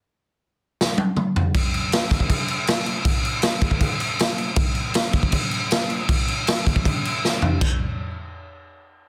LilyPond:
\new DrumStaff \with { instrumentName = "Drums" } \drummode { \time 4/4 \tempo 4 = 158 r4 r4 sn8 tommh8 toml8 tomfh8 | <cymc bd>8 cymc8 <cymc sn>8 <cymc bd>16 bd16 <cymc bd>8 cymc8 <cymc sn>8 cymc8 | <cymc bd>8 cymc8 <cymc sn>8 <cymc bd>16 bd16 <cymc bd>8 cymc8 <cymc sn>8 cymc8 | <cymc bd>8 cymc8 <cymc sn>8 <cymc bd>16 bd16 <cymc bd>8 cymc8 <cymc sn>8 cymc8 |
<cymc bd>8 cymc8 <cymc sn>8 <cymc bd>16 bd16 <cymc bd>8 cymc8 sn8 tomfh8 | <cymc bd>4 r4 r4 r4 | }